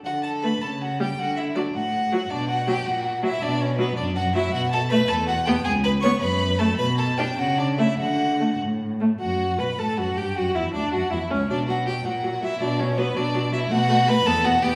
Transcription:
<<
  \new Staff \with { instrumentName = "Violin" } { \time 6/8 \key d \major \tempo 4. = 107 fis''8 a''8 b''8 a''8 fis''8 g''8 | fis''8 e''8 d''8 fis''4. | d''8 fis''8 g''8 fis''4 e''8 | d''8 cis''8 b'8 d''8 fis''8 e''8 |
fis''8 a''8 b''8 a''8 fis''8 g''8 | gis''8 b''8 cis'''8 b''4 a''8 | b''8 a''8 g''8 fis''8 d''8 e''8 | fis''4. r4. |
fis''4 b''8 a''8 fis''8 g''8 | fis''8 e''8 d''8 fis''8 e''8 cis''8 | d''8 fis''8 g''8 fis''4 e''8 | d''8 cis''8 b'8 d''4 e''8 |
fis''4 b''8 a''8 fis''8 g''8 | }
  \new Staff \with { instrumentName = "Violin" } { \time 6/8 \key d \major fis'8 a'8 b'8 a'8 fis'8 g'8 | fis'8 e'8 d'8 fis'4. | d'8 fis'8 g'8 fis'4 e'8 | d'8 cis'8 b8 d'8 fis'8 e'8 |
fis'8 a'8 b'8 a'8 fis'8 g'8 | gis'8 b'8 cis''8 b'4 a'8 | b'8 a'8 g'8 fis'8 d'8 e'8 | fis'4. r4. |
fis'4 b'8 a'8 fis'8 g'8 | fis'8 e'8 d'8 fis'8 e'8 cis'8 | d'8 fis'8 g'8 fis'4 e'8 | d'8 cis'8 b8 d'4 e'8 |
fis'4 b'8 a'8 fis'8 g'8 | }
  \new Staff \with { instrumentName = "Viola" } { \time 6/8 \key d \major r4 a16 r4 r16 g16 r16 | r4 fis16 r4 r16 fis16 r16 | r4 fis16 r4 r16 fis16 r16 | r4 fis16 r4 r16 fis16 r16 |
r4 a16 r4 r16 b16 r16 | r4 b16 r4 r16 a16 r16 | r4 d'16 r4 r16 a16 r16 | r4 a16 r4 r16 a16 r16 |
fis'4 b'8 a'8 fis'8 g'8 | fis'8 e'8 d'8 fis'8 e'8 cis'8 | fis8 fis8 fis8 fis8 fis8 fis8 | fis8 fis8 fis8 fis8 fis8 fis8 |
a8 a8 a8 b8 b8 b8 | }
  \new Staff \with { instrumentName = "Cello" } { \clef bass \time 6/8 \key d \major d4. cis4. | d4. a,4. | b,4. ais,4. | b,4. fis,4. |
b,4. e,4. | cis,4. fis,4. | b,4. cis4. | d4. a,4. |
fis,4 b,8 a,8 fis,8 g,8 | fis,8 e,8 d,8 fis,8 e,8 cis,8 | b,4. ais,4. | b,4. b,4. |
b,4. e,4. | }
>>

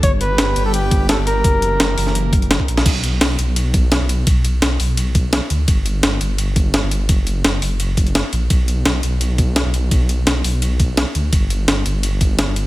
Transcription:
<<
  \new Staff \with { instrumentName = "Flugelhorn" } { \time 4/4 \key fis \phrygian \tempo 4 = 170 cis''8 b'4~ b'16 a'16 g'4 a'8 ais'8~ | ais'2. r4 | r1 | r1 |
r1 | r1 | r1 | r1 |
r1 | }
  \new Staff \with { instrumentName = "Analog synth pad" } { \time 4/4 \key fis \phrygian << { g'1~ | g'1 | r1 | r1 |
r1 | r1 | r1 | r1 |
r1 | } \\ { <g b>1 | <e ais>1 | r1 | r1 |
r1 | r1 | r1 | r1 |
r1 | } >> }
  \new Staff \with { instrumentName = "Detuned saw bass" } { \clef bass \time 4/4 \key fis \phrygian g,,4 g,,8 g,,4.~ g,,16 g,,8. | fis,,4 fis,,8 fis,,4.~ fis,,16 r16 ais,,8 | b,,4 b,,8 b,,4.~ b,,16 b,,8. | b,,4 b,,8 b,,4.~ b,,16 r16 d,8 |
g,,4 g,,8 g,,4.~ g,,16 g,,8. | fis,,4 fis,,8 fis,,4.~ fis,,16 r16 ais,,8 | b,,4 b,,8 b,,4.~ b,,16 b,,8. | b,,4 b,,8 b,,4.~ b,,16 r16 d,8 |
g,,4 g,,8 g,,4.~ g,,16 g,,8. | }
  \new DrumStaff \with { instrumentName = "Drums" } \drummode { \time 4/4 <hh bd>8 hh8 <hh sn>8 hh8 hh8 <hh bd>8 <hh sn>8 hh8 | <hh bd>8 hh8 <hh sn>8 hho16 sn16 hh8 <hh bd>16 hh16 <hh sn>16 bd16 hh16 <hh sn>16 | <cymc hh bd cymr>8 <hh cymr>8 <hh cymr sn>8 <hh cymr>8 <hh cymr>8 <hh bd cymr>8 <hh cymr sn>8 <hh cymr>8 | <hh bd cymr>8 <hh cymr>8 <hh cymr sn>8 <hho cymr>8 <hh cymr>8 <hh bd cymr>8 <hh cymr sn>8 <hh cymr>8 |
<hh bd cymr>8 <hh cymr>8 <hh cymr sn>8 <hh cymr>8 <hh cymr>8 <hh bd cymr>8 <hh cymr sn>8 <hh cymr>8 | <hh bd cymr>8 <hh cymr>8 <hh cymr sn>8 <hho cymr>8 <hh cymr>8 <hh bd cymr>16 hh16 <hh cymr sn>8 <hh cymr>8 | <hh bd cymr>8 <hh cymr>8 <hh cymr sn>8 <hh cymr>8 <hh cymr>8 <hh bd cymr>8 <hh cymr sn>8 <hh cymr>8 | <hh bd cymr>8 <hh cymr>8 <hh cymr sn>8 <hho cymr>8 <hh cymr>8 <hh bd cymr>8 <hh cymr sn>8 <hh cymr>8 |
<hh bd cymr>8 <hh cymr>8 <hh cymr sn>8 <hh cymr>8 <hh cymr>8 <hh bd cymr>8 <hh cymr sn>8 <hh cymr>8 | }
>>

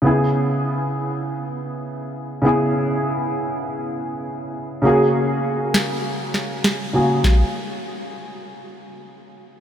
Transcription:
<<
  \new Staff \with { instrumentName = "Grand piano" } { \time 4/4 \key cis \dorian \tempo 4 = 100 <cis b e' gis'>1 | <cis b e' gis'>1 | <cis ais fis' gis'>2.~ <cis ais fis' gis'>8 <cis ais fis' gis'>8 | r1 | }
  \new DrumStaff \with { instrumentName = "Drums" } \drummode { \time 4/4 r4 r4 r4 r4 | r4 r4 r4 r4 | r4 r8 sn8 r8 sn8 sn4 | <bd sn>4 r4 r4 r4 | }
>>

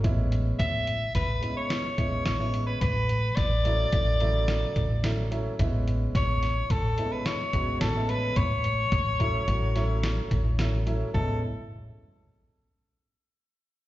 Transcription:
<<
  \new Staff \with { instrumentName = "Soprano saxophone" } { \time 5/4 \key a \major \tempo 4 = 108 r4 e''4 b'8. cis''4~ cis''16 cis''8. b'16 | b'4 d''2.~ d''8 r8 | r4 cis''4 a'8. b'16 cis''4 a'8 b'8 | cis''1 r4 |
a'8 r1 r8 | }
  \new Staff \with { instrumentName = "Grand piano" } { \time 5/4 \key a \major <gis b cis' e'>4. r4 <gis b cis' e'>8. r16 <gis b cis' e'>8 r16 <gis b cis' e'>8. | r4. <fis a cis' e'>16 r16 <fis a cis' e'>16 r16 <cis fis a e'>4 r8 <fis a cis' e'>16 r16 <fis a cis' e'>16 r16 | <gis b cis' e'>4. r4 <gis b cis' e'>8. r16 <gis b cis' fis'>8 r16 <gis b cis' e'>8. | r4. <fis a cis' e'>16 r16 <fis a cis' fis'>16 r16 <fis a cis' e'>4 r8 <fis a cis' e'>16 r16 <fis a cis' e'>16 r16 |
<gis b cis' e'>8 r1 r8 | }
  \new Staff \with { instrumentName = "Upright bass" } { \clef bass \time 5/4 \key a \major a,,4 a,,4 a,,8 r4 a,,8 a,,4 | a,,4 a,,4 a,,4. a,,4. | a,,4 a,,4 a,,8 r4 a,,8 a,,4 | a,,4 a,,4 a,,4. a,,4. |
a,,8 r1 r8 | }
  \new DrumStaff \with { instrumentName = "Drums" } \drummode { \time 5/4 <hh bd>8 hh8 <hh bd>8 hh8 <hh bd sn>8 hh8 <hh sn>8 <hh bd>8 <hh sn>8 hh8 | <hh bd>8 hh8 <hh bd sn>8 hh8 <hh bd>8 hh8 <hh sn>8 <hh bd>8 <hh sn>8 hh8 | <hh bd>8 hh8 <hh bd sn>8 <hh sn>8 <hh bd>8 hh8 <hh sn>8 <hh bd>8 <hh sn>8 hh8 | <hh bd>8 hh8 <hh bd>8 <hh bd>8 hh8 <hh sn>8 <hh sn>8 <hh bd>8 <hh sn>8 hh8 |
bd4 r4 r4 r4 r4 | }
>>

